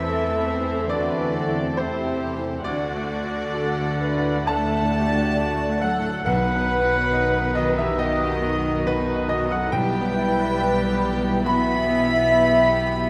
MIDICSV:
0, 0, Header, 1, 11, 480
1, 0, Start_track
1, 0, Key_signature, 1, "minor"
1, 0, Tempo, 875912
1, 1451, Time_signature, 4, 2, 24, 8
1, 1933, Tempo, 946372
1, 2413, Tempo, 892857
1, 3373, Tempo, 864553
1, 7169, End_track
2, 0, Start_track
2, 0, Title_t, "Oboe"
2, 0, Program_c, 0, 68
2, 0, Note_on_c, 0, 76, 93
2, 495, Note_on_c, 0, 74, 94
2, 504, Note_off_c, 0, 76, 0
2, 979, Note_on_c, 0, 72, 85
2, 988, Note_off_c, 0, 74, 0
2, 1305, Note_off_c, 0, 72, 0
2, 1462, Note_on_c, 0, 74, 95
2, 2414, Note_on_c, 0, 81, 105
2, 2423, Note_off_c, 0, 74, 0
2, 3139, Note_off_c, 0, 81, 0
2, 3146, Note_on_c, 0, 78, 89
2, 3372, Note_off_c, 0, 78, 0
2, 3382, Note_on_c, 0, 78, 113
2, 4100, Note_on_c, 0, 75, 85
2, 4108, Note_off_c, 0, 78, 0
2, 4215, Note_on_c, 0, 76, 75
2, 4223, Note_off_c, 0, 75, 0
2, 4335, Note_off_c, 0, 76, 0
2, 4341, Note_on_c, 0, 75, 107
2, 4826, Note_on_c, 0, 71, 93
2, 4834, Note_off_c, 0, 75, 0
2, 5065, Note_on_c, 0, 75, 81
2, 5073, Note_off_c, 0, 71, 0
2, 5179, Note_on_c, 0, 78, 84
2, 5188, Note_off_c, 0, 75, 0
2, 5292, Note_off_c, 0, 78, 0
2, 5295, Note_on_c, 0, 79, 99
2, 6091, Note_off_c, 0, 79, 0
2, 6257, Note_on_c, 0, 83, 127
2, 7169, Note_off_c, 0, 83, 0
2, 7169, End_track
3, 0, Start_track
3, 0, Title_t, "Violin section"
3, 0, Program_c, 1, 48
3, 0, Note_on_c, 1, 76, 96
3, 469, Note_off_c, 1, 76, 0
3, 494, Note_on_c, 1, 74, 89
3, 973, Note_on_c, 1, 72, 87
3, 974, Note_off_c, 1, 74, 0
3, 1451, Note_on_c, 1, 74, 99
3, 1452, Note_off_c, 1, 72, 0
3, 2393, Note_off_c, 1, 74, 0
3, 2413, Note_on_c, 1, 81, 105
3, 3138, Note_off_c, 1, 81, 0
3, 3140, Note_on_c, 1, 78, 93
3, 3361, Note_off_c, 1, 78, 0
3, 3368, Note_on_c, 1, 78, 100
3, 4076, Note_off_c, 1, 78, 0
3, 4095, Note_on_c, 1, 75, 75
3, 4211, Note_on_c, 1, 76, 88
3, 4214, Note_off_c, 1, 75, 0
3, 4328, Note_on_c, 1, 75, 94
3, 4333, Note_off_c, 1, 76, 0
3, 4815, Note_off_c, 1, 75, 0
3, 4817, Note_on_c, 1, 71, 83
3, 5056, Note_off_c, 1, 71, 0
3, 5057, Note_on_c, 1, 75, 82
3, 5175, Note_off_c, 1, 75, 0
3, 5177, Note_on_c, 1, 78, 83
3, 5294, Note_off_c, 1, 78, 0
3, 5298, Note_on_c, 1, 79, 111
3, 6255, Note_on_c, 1, 83, 123
3, 6257, Note_off_c, 1, 79, 0
3, 7169, Note_off_c, 1, 83, 0
3, 7169, End_track
4, 0, Start_track
4, 0, Title_t, "Flute section"
4, 0, Program_c, 2, 73
4, 0, Note_on_c, 2, 69, 102
4, 469, Note_off_c, 2, 69, 0
4, 492, Note_on_c, 2, 66, 86
4, 973, Note_off_c, 2, 66, 0
4, 978, Note_on_c, 2, 64, 80
4, 1329, Note_off_c, 2, 64, 0
4, 1454, Note_on_c, 2, 66, 89
4, 2395, Note_off_c, 2, 66, 0
4, 2415, Note_on_c, 2, 74, 111
4, 3125, Note_off_c, 2, 74, 0
4, 3136, Note_on_c, 2, 69, 91
4, 3372, Note_off_c, 2, 69, 0
4, 3375, Note_on_c, 2, 71, 102
4, 4080, Note_off_c, 2, 71, 0
4, 4089, Note_on_c, 2, 66, 85
4, 4211, Note_off_c, 2, 66, 0
4, 4213, Note_on_c, 2, 67, 84
4, 4331, Note_off_c, 2, 67, 0
4, 4331, Note_on_c, 2, 66, 97
4, 4694, Note_off_c, 2, 66, 0
4, 4821, Note_on_c, 2, 63, 88
4, 5053, Note_off_c, 2, 63, 0
4, 5062, Note_on_c, 2, 66, 89
4, 5176, Note_off_c, 2, 66, 0
4, 5182, Note_on_c, 2, 69, 85
4, 5295, Note_off_c, 2, 69, 0
4, 5296, Note_on_c, 2, 71, 108
4, 6257, Note_off_c, 2, 71, 0
4, 6257, Note_on_c, 2, 76, 115
4, 7169, Note_off_c, 2, 76, 0
4, 7169, End_track
5, 0, Start_track
5, 0, Title_t, "Violin section"
5, 0, Program_c, 3, 48
5, 28, Note_on_c, 3, 69, 75
5, 252, Note_off_c, 3, 69, 0
5, 263, Note_on_c, 3, 72, 73
5, 490, Note_off_c, 3, 72, 0
5, 498, Note_on_c, 3, 71, 84
5, 735, Note_off_c, 3, 71, 0
5, 739, Note_on_c, 3, 69, 75
5, 976, Note_off_c, 3, 69, 0
5, 983, Note_on_c, 3, 67, 79
5, 1457, Note_off_c, 3, 67, 0
5, 1464, Note_on_c, 3, 66, 77
5, 1929, Note_off_c, 3, 66, 0
5, 1942, Note_on_c, 3, 69, 78
5, 2174, Note_off_c, 3, 69, 0
5, 2176, Note_on_c, 3, 71, 78
5, 2415, Note_on_c, 3, 69, 82
5, 2416, Note_off_c, 3, 71, 0
5, 2661, Note_off_c, 3, 69, 0
5, 2669, Note_on_c, 3, 67, 75
5, 2905, Note_off_c, 3, 67, 0
5, 2912, Note_on_c, 3, 66, 76
5, 3143, Note_off_c, 3, 66, 0
5, 3153, Note_on_c, 3, 69, 88
5, 3380, Note_off_c, 3, 69, 0
5, 3380, Note_on_c, 3, 71, 106
5, 4318, Note_off_c, 3, 71, 0
5, 4335, Note_on_c, 3, 67, 89
5, 4575, Note_on_c, 3, 66, 72
5, 4577, Note_off_c, 3, 67, 0
5, 5289, Note_on_c, 3, 67, 88
5, 5293, Note_off_c, 3, 66, 0
5, 5525, Note_off_c, 3, 67, 0
5, 5536, Note_on_c, 3, 64, 77
5, 5777, Note_off_c, 3, 64, 0
5, 5777, Note_on_c, 3, 67, 91
5, 6256, Note_off_c, 3, 67, 0
5, 6257, Note_on_c, 3, 66, 75
5, 6495, Note_off_c, 3, 66, 0
5, 6499, Note_on_c, 3, 64, 72
5, 6735, Note_off_c, 3, 64, 0
5, 6735, Note_on_c, 3, 67, 82
5, 7169, Note_off_c, 3, 67, 0
5, 7169, End_track
6, 0, Start_track
6, 0, Title_t, "Viola section"
6, 0, Program_c, 4, 48
6, 0, Note_on_c, 4, 60, 71
6, 0, Note_on_c, 4, 69, 71
6, 1431, Note_off_c, 4, 60, 0
6, 1452, Note_off_c, 4, 69, 0
6, 1456, Note_on_c, 4, 78, 78
6, 1458, Note_on_c, 4, 57, 78
6, 3353, Note_off_c, 4, 78, 0
6, 3354, Note_off_c, 4, 57, 0
6, 3377, Note_on_c, 4, 59, 80
6, 3379, Note_on_c, 4, 63, 73
6, 5274, Note_off_c, 4, 59, 0
6, 5275, Note_off_c, 4, 63, 0
6, 5295, Note_on_c, 4, 64, 82
6, 5297, Note_on_c, 4, 59, 81
6, 7169, Note_off_c, 4, 59, 0
6, 7169, Note_off_c, 4, 64, 0
6, 7169, End_track
7, 0, Start_track
7, 0, Title_t, "Grand piano"
7, 0, Program_c, 5, 0
7, 0, Control_c, 5, 64, 127
7, 0, Note_on_c, 5, 40, 64
7, 0, Note_on_c, 5, 57, 55
7, 0, Note_on_c, 5, 64, 52
7, 0, Note_on_c, 5, 76, 96
7, 10, Note_on_c, 5, 72, 59
7, 105, Note_off_c, 5, 64, 0
7, 167, Note_off_c, 5, 57, 0
7, 167, Note_on_c, 5, 57, 52
7, 264, Note_off_c, 5, 72, 0
7, 329, Note_on_c, 5, 52, 54
7, 422, Note_off_c, 5, 57, 0
7, 463, Note_off_c, 5, 40, 0
7, 465, Note_off_c, 5, 76, 0
7, 488, Note_on_c, 5, 57, 55
7, 489, Note_on_c, 5, 74, 96
7, 585, Note_off_c, 5, 52, 0
7, 645, Note_on_c, 5, 52, 56
7, 746, Note_off_c, 5, 57, 0
7, 812, Note_on_c, 5, 64, 56
7, 905, Note_off_c, 5, 52, 0
7, 950, Note_off_c, 5, 74, 0
7, 971, Note_on_c, 5, 72, 99
7, 1068, Note_off_c, 5, 64, 0
7, 1132, Note_on_c, 5, 57, 54
7, 1295, Note_on_c, 5, 52, 57
7, 1388, Note_off_c, 5, 57, 0
7, 1429, Note_off_c, 5, 72, 0
7, 1449, Note_on_c, 5, 74, 100
7, 1453, Note_off_c, 5, 52, 0
7, 1456, Note_on_c, 5, 38, 72
7, 1461, Control_c, 5, 64, 0
7, 1555, Control_c, 5, 64, 127
7, 1621, Note_on_c, 5, 57, 59
7, 1778, Note_on_c, 5, 66, 55
7, 1872, Note_off_c, 5, 57, 0
7, 1935, Note_off_c, 5, 74, 0
7, 1942, Note_on_c, 5, 74, 60
7, 2028, Note_off_c, 5, 66, 0
7, 2096, Note_on_c, 5, 57, 50
7, 2191, Note_off_c, 5, 74, 0
7, 2260, Note_on_c, 5, 45, 49
7, 2352, Note_off_c, 5, 57, 0
7, 2394, Note_off_c, 5, 38, 0
7, 2412, Note_on_c, 5, 81, 116
7, 2421, Note_on_c, 5, 57, 63
7, 2517, Note_off_c, 5, 45, 0
7, 2587, Note_on_c, 5, 45, 53
7, 2681, Note_off_c, 5, 57, 0
7, 2749, Note_on_c, 5, 66, 59
7, 2842, Note_off_c, 5, 45, 0
7, 2911, Note_on_c, 5, 74, 61
7, 3000, Note_off_c, 5, 66, 0
7, 3068, Note_on_c, 5, 57, 55
7, 3116, Note_off_c, 5, 81, 0
7, 3134, Note_on_c, 5, 78, 100
7, 3158, Note_off_c, 5, 74, 0
7, 3226, Note_on_c, 5, 45, 54
7, 3314, Note_off_c, 5, 57, 0
7, 3354, Note_off_c, 5, 78, 0
7, 3373, Note_on_c, 5, 78, 109
7, 3378, Note_off_c, 5, 45, 0
7, 3381, Note_on_c, 5, 35, 77
7, 3383, Control_c, 5, 64, 0
7, 3463, Control_c, 5, 64, 127
7, 3540, Note_on_c, 5, 59, 64
7, 3700, Note_on_c, 5, 66, 53
7, 3792, Note_off_c, 5, 59, 0
7, 3858, Note_on_c, 5, 75, 61
7, 3952, Note_off_c, 5, 66, 0
7, 4015, Note_on_c, 5, 59, 59
7, 4070, Note_off_c, 5, 78, 0
7, 4083, Note_off_c, 5, 75, 0
7, 4091, Note_on_c, 5, 75, 97
7, 4181, Note_on_c, 5, 42, 63
7, 4204, Note_off_c, 5, 75, 0
7, 4219, Note_on_c, 5, 76, 88
7, 4271, Note_off_c, 5, 59, 0
7, 4316, Note_off_c, 5, 35, 0
7, 4329, Note_off_c, 5, 76, 0
7, 4333, Note_on_c, 5, 75, 113
7, 4343, Note_on_c, 5, 59, 58
7, 4435, Note_off_c, 5, 42, 0
7, 4501, Note_on_c, 5, 42, 58
7, 4597, Note_off_c, 5, 59, 0
7, 4665, Note_on_c, 5, 66, 60
7, 4756, Note_off_c, 5, 42, 0
7, 4795, Note_off_c, 5, 75, 0
7, 4821, Note_on_c, 5, 71, 107
7, 4826, Note_on_c, 5, 75, 68
7, 4917, Note_off_c, 5, 66, 0
7, 4982, Note_on_c, 5, 59, 55
7, 5042, Note_off_c, 5, 71, 0
7, 5048, Note_off_c, 5, 75, 0
7, 5056, Note_on_c, 5, 75, 106
7, 5140, Note_on_c, 5, 42, 60
7, 5166, Note_off_c, 5, 75, 0
7, 5182, Note_on_c, 5, 78, 92
7, 5233, Note_off_c, 5, 59, 0
7, 5289, Note_off_c, 5, 78, 0
7, 5295, Note_off_c, 5, 42, 0
7, 5295, Note_on_c, 5, 35, 75
7, 5295, Note_on_c, 5, 79, 106
7, 5303, Control_c, 5, 64, 0
7, 5378, Control_c, 5, 64, 127
7, 5456, Note_on_c, 5, 59, 62
7, 5622, Note_on_c, 5, 64, 56
7, 5712, Note_off_c, 5, 59, 0
7, 5783, Note_on_c, 5, 76, 65
7, 5877, Note_off_c, 5, 64, 0
7, 5943, Note_on_c, 5, 59, 56
7, 6036, Note_off_c, 5, 76, 0
7, 6101, Note_on_c, 5, 47, 54
7, 6194, Note_off_c, 5, 59, 0
7, 6233, Note_off_c, 5, 79, 0
7, 6234, Note_off_c, 5, 35, 0
7, 6259, Note_on_c, 5, 59, 57
7, 6262, Note_on_c, 5, 83, 116
7, 6353, Note_off_c, 5, 47, 0
7, 6419, Note_on_c, 5, 47, 62
7, 6512, Note_off_c, 5, 59, 0
7, 6576, Note_on_c, 5, 64, 61
7, 6672, Note_off_c, 5, 47, 0
7, 6735, Note_on_c, 5, 76, 69
7, 6829, Note_off_c, 5, 64, 0
7, 6895, Note_on_c, 5, 59, 52
7, 6988, Note_off_c, 5, 76, 0
7, 7055, Note_on_c, 5, 47, 55
7, 7148, Note_off_c, 5, 59, 0
7, 7169, Note_off_c, 5, 47, 0
7, 7169, Note_off_c, 5, 83, 0
7, 7169, End_track
8, 0, Start_track
8, 0, Title_t, "French horn section"
8, 0, Program_c, 6, 60
8, 0, Note_on_c, 6, 57, 81
8, 0, Note_on_c, 6, 60, 73
8, 1430, Note_off_c, 6, 60, 0
8, 1431, Note_off_c, 6, 57, 0
8, 1451, Note_on_c, 6, 57, 74
8, 1452, Note_on_c, 6, 62, 85
8, 3286, Note_off_c, 6, 57, 0
8, 3286, Note_off_c, 6, 62, 0
8, 3377, Note_on_c, 6, 63, 73
8, 3378, Note_on_c, 6, 51, 83
8, 5274, Note_off_c, 6, 51, 0
8, 5274, Note_off_c, 6, 63, 0
8, 5301, Note_on_c, 6, 64, 79
8, 5302, Note_on_c, 6, 52, 80
8, 7169, Note_off_c, 6, 52, 0
8, 7169, Note_off_c, 6, 64, 0
8, 7169, End_track
9, 0, Start_track
9, 0, Title_t, "Cello section"
9, 0, Program_c, 7, 48
9, 0, Note_on_c, 7, 52, 97
9, 470, Note_off_c, 7, 52, 0
9, 491, Note_on_c, 7, 50, 81
9, 973, Note_off_c, 7, 50, 0
9, 977, Note_on_c, 7, 48, 72
9, 1454, Note_off_c, 7, 48, 0
9, 1455, Note_on_c, 7, 50, 94
9, 2395, Note_off_c, 7, 50, 0
9, 2416, Note_on_c, 7, 57, 93
9, 3140, Note_off_c, 7, 57, 0
9, 3142, Note_on_c, 7, 54, 82
9, 3366, Note_off_c, 7, 54, 0
9, 3372, Note_on_c, 7, 54, 93
9, 4078, Note_off_c, 7, 54, 0
9, 4094, Note_on_c, 7, 51, 90
9, 4214, Note_off_c, 7, 51, 0
9, 4219, Note_on_c, 7, 52, 82
9, 4337, Note_off_c, 7, 52, 0
9, 4339, Note_on_c, 7, 51, 94
9, 4810, Note_off_c, 7, 51, 0
9, 4820, Note_on_c, 7, 47, 85
9, 5056, Note_on_c, 7, 51, 78
9, 5058, Note_off_c, 7, 47, 0
9, 5175, Note_off_c, 7, 51, 0
9, 5177, Note_on_c, 7, 54, 73
9, 5294, Note_off_c, 7, 54, 0
9, 5295, Note_on_c, 7, 55, 104
9, 6236, Note_off_c, 7, 55, 0
9, 6259, Note_on_c, 7, 59, 104
9, 7169, Note_off_c, 7, 59, 0
9, 7169, End_track
10, 0, Start_track
10, 0, Title_t, "Timpani"
10, 0, Program_c, 8, 47
10, 0, Note_on_c, 8, 40, 89
10, 228, Note_off_c, 8, 40, 0
10, 3377, Note_on_c, 8, 47, 89
10, 4073, Note_off_c, 8, 47, 0
10, 5298, Note_on_c, 8, 47, 78
10, 5997, Note_off_c, 8, 47, 0
10, 7169, End_track
11, 0, Start_track
11, 0, Title_t, "Double bass section"
11, 0, Program_c, 10, 48
11, 0, Note_on_c, 10, 40, 75
11, 1428, Note_off_c, 10, 40, 0
11, 1457, Note_on_c, 10, 38, 81
11, 3354, Note_off_c, 10, 38, 0
11, 3378, Note_on_c, 10, 35, 87
11, 5274, Note_off_c, 10, 35, 0
11, 5299, Note_on_c, 10, 35, 87
11, 7169, Note_off_c, 10, 35, 0
11, 7169, End_track
0, 0, End_of_file